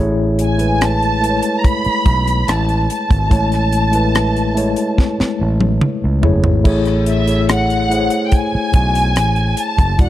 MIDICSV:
0, 0, Header, 1, 6, 480
1, 0, Start_track
1, 0, Key_signature, 3, "major"
1, 0, Tempo, 834608
1, 1908, Time_signature, 4, 2, 24, 8
1, 5804, End_track
2, 0, Start_track
2, 0, Title_t, "Violin section"
2, 0, Program_c, 0, 48
2, 239, Note_on_c, 0, 80, 73
2, 457, Note_off_c, 0, 80, 0
2, 476, Note_on_c, 0, 81, 89
2, 912, Note_off_c, 0, 81, 0
2, 912, Note_on_c, 0, 82, 69
2, 950, Note_off_c, 0, 82, 0
2, 950, Note_on_c, 0, 83, 96
2, 1429, Note_off_c, 0, 83, 0
2, 1437, Note_on_c, 0, 81, 85
2, 1672, Note_off_c, 0, 81, 0
2, 1678, Note_on_c, 0, 81, 91
2, 3090, Note_off_c, 0, 81, 0
2, 4073, Note_on_c, 0, 76, 75
2, 4293, Note_off_c, 0, 76, 0
2, 4317, Note_on_c, 0, 78, 83
2, 4752, Note_off_c, 0, 78, 0
2, 4754, Note_on_c, 0, 79, 64
2, 4791, Note_off_c, 0, 79, 0
2, 4802, Note_on_c, 0, 80, 90
2, 5514, Note_off_c, 0, 80, 0
2, 5521, Note_on_c, 0, 81, 94
2, 5754, Note_off_c, 0, 81, 0
2, 5758, Note_on_c, 0, 78, 100
2, 5804, Note_off_c, 0, 78, 0
2, 5804, End_track
3, 0, Start_track
3, 0, Title_t, "Tine electric piano"
3, 0, Program_c, 1, 4
3, 0, Note_on_c, 1, 57, 93
3, 0, Note_on_c, 1, 64, 90
3, 0, Note_on_c, 1, 68, 84
3, 0, Note_on_c, 1, 73, 106
3, 99, Control_c, 1, 64, 127
3, 303, Note_off_c, 1, 57, 0
3, 306, Note_off_c, 1, 64, 0
3, 310, Note_off_c, 1, 68, 0
3, 313, Note_off_c, 1, 73, 0
3, 329, Note_on_c, 1, 57, 66
3, 336, Note_on_c, 1, 64, 56
3, 344, Note_on_c, 1, 56, 59
3, 349, Note_on_c, 1, 71, 65
3, 660, Note_off_c, 1, 57, 0
3, 663, Note_off_c, 1, 64, 0
3, 667, Note_off_c, 1, 56, 0
3, 670, Note_off_c, 1, 71, 0
3, 693, Note_on_c, 1, 57, 71
3, 698, Note_on_c, 1, 64, 61
3, 706, Note_on_c, 1, 56, 62
3, 710, Note_on_c, 1, 71, 55
3, 746, Note_off_c, 1, 71, 0
3, 749, Note_on_c, 1, 73, 78
3, 1558, Note_off_c, 1, 57, 0
3, 1560, Note_off_c, 1, 64, 0
3, 1564, Note_off_c, 1, 56, 0
3, 1585, Note_off_c, 1, 73, 0
3, 1894, Note_on_c, 1, 57, 86
3, 1901, Note_on_c, 1, 64, 73
3, 1904, Note_on_c, 1, 56, 73
3, 1914, Note_on_c, 1, 73, 92
3, 1916, Control_c, 1, 64, 0
3, 2012, Control_c, 1, 64, 127
3, 2222, Note_off_c, 1, 57, 0
3, 2226, Note_off_c, 1, 64, 0
3, 2227, Note_off_c, 1, 56, 0
3, 2232, Note_off_c, 1, 73, 0
3, 2250, Note_on_c, 1, 57, 68
3, 2258, Note_on_c, 1, 64, 69
3, 2265, Note_on_c, 1, 56, 66
3, 2269, Note_on_c, 1, 71, 81
3, 2580, Note_off_c, 1, 57, 0
3, 2584, Note_off_c, 1, 64, 0
3, 2588, Note_off_c, 1, 56, 0
3, 2590, Note_off_c, 1, 71, 0
3, 2613, Note_on_c, 1, 57, 83
3, 2618, Note_on_c, 1, 64, 69
3, 2626, Note_on_c, 1, 56, 73
3, 2632, Note_on_c, 1, 73, 85
3, 3477, Note_off_c, 1, 57, 0
3, 3480, Note_off_c, 1, 64, 0
3, 3484, Note_off_c, 1, 56, 0
3, 3487, Note_off_c, 1, 73, 0
3, 3576, Note_on_c, 1, 57, 72
3, 3584, Note_on_c, 1, 64, 73
3, 3589, Note_on_c, 1, 68, 64
3, 3596, Note_on_c, 1, 73, 81
3, 3796, Note_off_c, 1, 57, 0
3, 3800, Note_off_c, 1, 64, 0
3, 3802, Note_off_c, 1, 68, 0
3, 3806, Note_off_c, 1, 73, 0
3, 3818, Note_on_c, 1, 57, 89
3, 3822, Note_on_c, 1, 64, 83
3, 3828, Note_on_c, 1, 68, 82
3, 3834, Control_c, 1, 64, 0
3, 3836, Note_on_c, 1, 73, 98
3, 3928, Control_c, 1, 64, 127
3, 4144, Note_off_c, 1, 57, 0
3, 4146, Note_off_c, 1, 64, 0
3, 4149, Note_off_c, 1, 68, 0
3, 4153, Note_off_c, 1, 73, 0
3, 4175, Note_on_c, 1, 57, 62
3, 4181, Note_on_c, 1, 64, 57
3, 4187, Note_on_c, 1, 68, 52
3, 4193, Note_on_c, 1, 73, 61
3, 4503, Note_off_c, 1, 57, 0
3, 4505, Note_off_c, 1, 64, 0
3, 4509, Note_off_c, 1, 68, 0
3, 4511, Note_off_c, 1, 73, 0
3, 4537, Note_on_c, 1, 57, 71
3, 4544, Note_on_c, 1, 64, 60
3, 4550, Note_on_c, 1, 68, 61
3, 4558, Note_on_c, 1, 72, 55
3, 4590, Note_off_c, 1, 72, 0
3, 4592, Note_on_c, 1, 73, 71
3, 5399, Note_off_c, 1, 57, 0
3, 5403, Note_off_c, 1, 64, 0
3, 5406, Note_off_c, 1, 68, 0
3, 5427, Note_off_c, 1, 73, 0
3, 5736, Note_on_c, 1, 56, 82
3, 5743, Note_on_c, 1, 64, 69
3, 5749, Note_on_c, 1, 66, 69
3, 5754, Control_c, 1, 64, 0
3, 5755, Note_on_c, 1, 74, 83
3, 5804, Note_off_c, 1, 56, 0
3, 5804, Note_off_c, 1, 64, 0
3, 5804, Note_off_c, 1, 66, 0
3, 5804, Note_off_c, 1, 74, 0
3, 5804, End_track
4, 0, Start_track
4, 0, Title_t, "Fingered electric bass"
4, 0, Program_c, 2, 33
4, 0, Note_on_c, 2, 33, 82
4, 805, Note_off_c, 2, 33, 0
4, 1187, Note_on_c, 2, 35, 84
4, 1400, Note_off_c, 2, 35, 0
4, 1429, Note_on_c, 2, 33, 88
4, 1641, Note_off_c, 2, 33, 0
4, 1788, Note_on_c, 2, 32, 75
4, 1894, Note_off_c, 2, 32, 0
4, 1907, Note_on_c, 2, 33, 81
4, 2724, Note_off_c, 2, 33, 0
4, 3113, Note_on_c, 2, 33, 83
4, 3323, Note_off_c, 2, 33, 0
4, 3474, Note_on_c, 2, 37, 74
4, 3577, Note_off_c, 2, 37, 0
4, 3595, Note_on_c, 2, 30, 86
4, 3698, Note_off_c, 2, 30, 0
4, 3714, Note_on_c, 2, 32, 72
4, 3817, Note_off_c, 2, 32, 0
4, 3829, Note_on_c, 2, 33, 75
4, 4645, Note_off_c, 2, 33, 0
4, 5028, Note_on_c, 2, 35, 84
4, 5274, Note_off_c, 2, 35, 0
4, 5274, Note_on_c, 2, 33, 78
4, 5483, Note_off_c, 2, 33, 0
4, 5631, Note_on_c, 2, 30, 76
4, 5735, Note_off_c, 2, 30, 0
4, 5749, Note_on_c, 2, 28, 92
4, 5804, Note_off_c, 2, 28, 0
4, 5804, End_track
5, 0, Start_track
5, 0, Title_t, "Muted fingered electric bass strokes"
5, 1071, Note_on_c, 9, 29, 41
5, 1129, Note_off_c, 9, 29, 0
5, 2994, Note_on_c, 9, 29, 45
5, 3051, Note_off_c, 9, 29, 0
5, 4916, Note_on_c, 9, 29, 44
5, 4974, Note_off_c, 9, 29, 0
5, 5804, End_track
6, 0, Start_track
6, 0, Title_t, "Drums"
6, 223, Note_on_c, 9, 42, 65
6, 280, Note_off_c, 9, 42, 0
6, 340, Note_on_c, 9, 42, 51
6, 398, Note_off_c, 9, 42, 0
6, 467, Note_on_c, 9, 42, 74
6, 471, Note_on_c, 9, 37, 107
6, 525, Note_off_c, 9, 42, 0
6, 528, Note_off_c, 9, 37, 0
6, 589, Note_on_c, 9, 42, 30
6, 647, Note_off_c, 9, 42, 0
6, 712, Note_on_c, 9, 42, 58
6, 769, Note_off_c, 9, 42, 0
6, 819, Note_on_c, 9, 42, 52
6, 877, Note_off_c, 9, 42, 0
6, 945, Note_on_c, 9, 42, 69
6, 946, Note_on_c, 9, 36, 69
6, 1003, Note_off_c, 9, 36, 0
6, 1003, Note_off_c, 9, 42, 0
6, 1061, Note_on_c, 9, 42, 30
6, 1119, Note_off_c, 9, 42, 0
6, 1183, Note_on_c, 9, 42, 53
6, 1184, Note_on_c, 9, 36, 82
6, 1240, Note_off_c, 9, 42, 0
6, 1241, Note_off_c, 9, 36, 0
6, 1308, Note_on_c, 9, 42, 54
6, 1365, Note_off_c, 9, 42, 0
6, 1427, Note_on_c, 9, 42, 83
6, 1434, Note_on_c, 9, 37, 100
6, 1485, Note_off_c, 9, 42, 0
6, 1491, Note_off_c, 9, 37, 0
6, 1545, Note_on_c, 9, 42, 29
6, 1603, Note_off_c, 9, 42, 0
6, 1668, Note_on_c, 9, 42, 65
6, 1725, Note_off_c, 9, 42, 0
6, 1786, Note_on_c, 9, 36, 89
6, 1787, Note_on_c, 9, 42, 52
6, 1844, Note_off_c, 9, 36, 0
6, 1845, Note_off_c, 9, 42, 0
6, 1905, Note_on_c, 9, 36, 96
6, 1905, Note_on_c, 9, 42, 74
6, 1962, Note_off_c, 9, 36, 0
6, 1963, Note_off_c, 9, 42, 0
6, 2024, Note_on_c, 9, 42, 34
6, 2036, Note_on_c, 9, 37, 34
6, 2081, Note_off_c, 9, 42, 0
6, 2093, Note_off_c, 9, 37, 0
6, 2142, Note_on_c, 9, 42, 58
6, 2199, Note_off_c, 9, 42, 0
6, 2260, Note_on_c, 9, 42, 47
6, 2317, Note_off_c, 9, 42, 0
6, 2387, Note_on_c, 9, 42, 70
6, 2390, Note_on_c, 9, 37, 109
6, 2444, Note_off_c, 9, 42, 0
6, 2448, Note_off_c, 9, 37, 0
6, 2510, Note_on_c, 9, 42, 32
6, 2567, Note_off_c, 9, 42, 0
6, 2628, Note_on_c, 9, 42, 60
6, 2686, Note_off_c, 9, 42, 0
6, 2739, Note_on_c, 9, 42, 52
6, 2797, Note_off_c, 9, 42, 0
6, 2866, Note_on_c, 9, 36, 73
6, 2869, Note_on_c, 9, 38, 40
6, 2924, Note_off_c, 9, 36, 0
6, 2927, Note_off_c, 9, 38, 0
6, 2991, Note_on_c, 9, 38, 41
6, 3049, Note_off_c, 9, 38, 0
6, 3224, Note_on_c, 9, 48, 68
6, 3281, Note_off_c, 9, 48, 0
6, 3344, Note_on_c, 9, 47, 72
6, 3401, Note_off_c, 9, 47, 0
6, 3584, Note_on_c, 9, 43, 79
6, 3641, Note_off_c, 9, 43, 0
6, 3702, Note_on_c, 9, 43, 84
6, 3759, Note_off_c, 9, 43, 0
6, 3825, Note_on_c, 9, 49, 70
6, 3826, Note_on_c, 9, 36, 99
6, 3883, Note_off_c, 9, 36, 0
6, 3883, Note_off_c, 9, 49, 0
6, 3941, Note_on_c, 9, 42, 29
6, 3953, Note_on_c, 9, 37, 31
6, 3998, Note_off_c, 9, 42, 0
6, 4010, Note_off_c, 9, 37, 0
6, 4062, Note_on_c, 9, 42, 57
6, 4120, Note_off_c, 9, 42, 0
6, 4183, Note_on_c, 9, 42, 47
6, 4241, Note_off_c, 9, 42, 0
6, 4307, Note_on_c, 9, 42, 75
6, 4311, Note_on_c, 9, 37, 112
6, 4365, Note_off_c, 9, 42, 0
6, 4368, Note_off_c, 9, 37, 0
6, 4429, Note_on_c, 9, 42, 33
6, 4487, Note_off_c, 9, 42, 0
6, 4552, Note_on_c, 9, 42, 58
6, 4609, Note_off_c, 9, 42, 0
6, 4660, Note_on_c, 9, 42, 49
6, 4718, Note_off_c, 9, 42, 0
6, 4783, Note_on_c, 9, 42, 68
6, 4787, Note_on_c, 9, 36, 69
6, 4840, Note_off_c, 9, 42, 0
6, 4844, Note_off_c, 9, 36, 0
6, 5023, Note_on_c, 9, 42, 52
6, 5025, Note_on_c, 9, 36, 81
6, 5081, Note_off_c, 9, 42, 0
6, 5083, Note_off_c, 9, 36, 0
6, 5148, Note_on_c, 9, 42, 58
6, 5206, Note_off_c, 9, 42, 0
6, 5267, Note_on_c, 9, 42, 84
6, 5273, Note_on_c, 9, 37, 93
6, 5325, Note_off_c, 9, 42, 0
6, 5331, Note_off_c, 9, 37, 0
6, 5382, Note_on_c, 9, 42, 28
6, 5440, Note_off_c, 9, 42, 0
6, 5504, Note_on_c, 9, 42, 64
6, 5561, Note_off_c, 9, 42, 0
6, 5627, Note_on_c, 9, 36, 90
6, 5629, Note_on_c, 9, 42, 53
6, 5632, Note_on_c, 9, 37, 31
6, 5685, Note_off_c, 9, 36, 0
6, 5686, Note_off_c, 9, 42, 0
6, 5690, Note_off_c, 9, 37, 0
6, 5744, Note_on_c, 9, 42, 70
6, 5745, Note_on_c, 9, 36, 103
6, 5801, Note_off_c, 9, 42, 0
6, 5803, Note_off_c, 9, 36, 0
6, 5804, End_track
0, 0, End_of_file